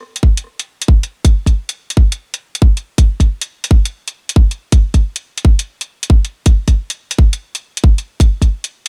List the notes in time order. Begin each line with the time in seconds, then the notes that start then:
0.16 closed hi-hat
0.23 kick
0.37 closed hi-hat
0.59 closed hi-hat
0.82 closed hi-hat
0.88 kick
1.03 closed hi-hat
1.25 kick, closed hi-hat
1.46 kick, closed hi-hat
1.69 closed hi-hat
1.90 closed hi-hat
1.97 kick
2.12 closed hi-hat
2.34 closed hi-hat
2.55 closed hi-hat
2.62 kick
2.77 closed hi-hat
2.98 kick, closed hi-hat
3.20 kick, closed hi-hat
3.41 closed hi-hat
3.64 closed hi-hat
3.71 kick
3.85 closed hi-hat
4.08 closed hi-hat
4.29 closed hi-hat
4.36 kick
4.51 closed hi-hat
4.72 kick, closed hi-hat
4.94 kick, closed hi-hat
5.16 closed hi-hat
5.38 closed hi-hat
5.45 kick
5.59 closed hi-hat
5.81 closed hi-hat
6.03 closed hi-hat
6.10 kick
6.25 closed hi-hat
6.46 kick, closed hi-hat
6.68 kick, closed hi-hat
6.90 closed hi-hat
7.11 closed hi-hat
7.19 kick
7.33 closed hi-hat
7.55 closed hi-hat
7.77 closed hi-hat
7.84 kick
7.98 closed hi-hat
8.20 kick, closed hi-hat
8.42 kick, closed hi-hat
8.64 closed hi-hat